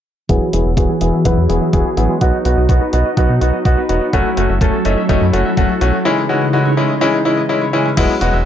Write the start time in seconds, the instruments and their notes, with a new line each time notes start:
0.29 analog synth bass E1, string machine E3 B3 F#4 G#4, kora F#3, grand piano B3 E4 G#4, kick, closed hi-hat
0.41 kora E4
0.53 analog synth bass E1, grand piano B3 E4 G#4, kora F#4, closed hi-hat
0.65 analog synth bass E1, kora E5
0.77 analog synth bass E1, grand piano B3 E4 G#4, kora F#4, kick, closed hi-hat
0.89 kora G#4
1.01 analog synth bass E1, grand piano B3 E4 G#4, kora E5, closed hi-hat
1.13 kora E5
1.25 analog synth bass E1, kora F#3, grand piano B3 E4 B4, kick, closed hi-hat
1.37 analog synth bass E2, kora E4
1.49 analog synth bass E1, grand piano B3 E4 G#4, kora F#4, closed hi-hat
1.61 kora E5
1.73 analog synth bass E1, grand piano B3 E4 G#4, kora F#4, kick, closed hi-hat
1.85 kora G#4
1.97 analog synth bass A1, kora F#3, grand piano B3 E4 G#4, closed hi-hat
2.09 kora G#3
2.21 analog synth bass B1, kora F#3, grand piano B3 D#4 F#4, string machine D#4, kick, closed hi-hat
2.33 kora D#4
2.45 analog synth bass B1, grand piano B3 D#4 F#4, kora F#4, closed hi-hat
2.57 analog synth bass B1, kora D#5
2.69 analog synth bass B1, grand piano B3 D#4 F#4, kora F#4, kick, closed hi-hat
2.81 kora B4
2.93 analog synth bass B1, grand piano B3 D#4 F#4, kora D#5, closed hi-hat
3.05 kora D#5
3.17 analog synth bass B1, kora F#3, grand piano B3 D#4 F#4, kick, closed hi-hat
3.29 analog synth bass B2, kora D#4
3.41 analog synth bass B1, grand piano B3 D#4 F#4, kora F#4, closed hi-hat
3.53 kora D#5
3.65 analog synth bass B1, grand piano B3 D#4 F#4, kora F#4, kick, closed hi-hat
3.77 kora B4
3.89 analog synth bass E1, kora F#3, grand piano B3 D#4 F#4, closed hi-hat
4.01 kora B3
4.13 analog synth bass F#1, string machine F#3 C#4 E4 A4, kora F#3, grand piano A3 C#4 F#4, kick, closed hi-hat
4.25 kora E4
4.37 analog synth bass F#1, grand piano A3 C#4 F#4, kora F#4, closed hi-hat
4.49 analog synth bass F#1, kora E5
4.61 analog synth bass F#1, grand piano A3 C#4 A4, kora F#4, kick, closed hi-hat
4.73 kora A4
4.85 analog synth bass F#1, grand piano A3 C#4 D#4, kora E5, closed hi-hat
4.97 kora E5
5.09 analog synth bass F#1, kora F#3, grand piano A3 C#4 D#4, kick, closed hi-hat
5.21 analog synth bass F#2, kora E4
5.33 analog synth bass F#1, grand piano A3 C#4 F#4, kora F#4, closed hi-hat
5.45 kora E5
5.57 analog synth bass F#1, grand piano A3 C#4 F#4, kora F#4, kick, closed hi-hat
5.69 kora A4
5.81 analog synth bass B1, kora F#3, grand piano A3 C#4 F#4, closed hi-hat
5.93 kora A3
6.05 string machine C#3 C#4 D#4 E4, kora E3, grand piano G#3 C#4 E4
6.17 kora D#4
6.29 grand piano G#3 C#4 F#4, kora E4
6.41 kora D#5
6.53 grand piano G#3 C#4 F#4, kora E4
6.65 kora C#5
6.77 grand piano G#3 C#4 E4, kora D#5
6.89 kora D#5
7.01 kora E3, grand piano G#3 C#4 E4
7.13 kora D#4
7.25 grand piano G#3 C#4 E4, kora E4
7.37 kora D#5
7.49 grand piano G#3 C#4 E4, kora E4
7.61 kora C#5
7.73 kora E3, grand piano G#3 C#4 E4
7.85 kora C#4
7.97 analog synth bass E1, kora F#3, grand piano G#3 B3 E4, kick, closed hi-hat, crash
8.09 kora E4
8.21 analog synth bass E1, grand piano G#3 B3 F#4, kora F#4, closed hi-hat
8.33 analog synth bass E1, kora E5